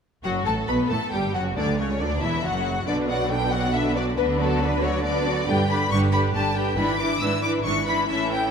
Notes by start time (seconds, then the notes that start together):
0.23 F#1 F#2 F#3 F#4 F#5
0.46 A1 A2 A3 A4 A5
0.68 B1 B2 B3 B4 B5
0.89 A1 A2 A3 A4 A5
1.12 G1 G2 G3 G4 G5
1.33 F#1 F#2 F#3 F#4 F#5
1.56 D2 D3 D4 D5
1.78 C#2 C#3 C#4 C#5
1.99 D2 D3 D4 D5
2.22 E1 E2 E3 E4 E5
2.44 F#1 F#2 F#3 F#4 F#5
2.87 B1 B2 D3 D4 B4 D5
3.08 F#3 B3 F#4 D5 F#5
3.31 D3 D4 B4 G5
3.52 F#3 B3 F#4 D5 F#5
3.74 D3 D4 B4 E5
3.95 F#3 B3 F#4 D5
4.17 D2 D3 B3 D4 B4
4.39 F#3 B3 F#4 A4 D5
4.60 B3 D4 B4
4.82 F#3 B3 F#4 C#5 D5
5.03 B3 D4 B4 D5
5.26 F#3 B3 F#4 D5
5.47 G1 G2 D3 D4 G4 B4 G5
5.69 D3 D4 G4 B4 B5
5.91 G1 G2 D3 D4 G4 B4 C#6
6.12 D3 D4 G4 B4 B5
6.34 G1 G2 D3 D4 G4 B4 A5
6.55 D3 D4 G4 B4 G5
6.77 G#1 G#2 E3 D4 E4 B4 B5
6.99 E3 D4 E4 B4 D6
7.21 G#1 G#2 E3 D4 E4 B4 E6
7.43 E3 D4 E4 B4 D6
7.64 G#1 G#2 E3 D4 E4 B4 C#6
7.86 E3 D4 E4 B4 B5
8.08 A1 A2 E3 C#4 E4 A4 E5
8.32 G5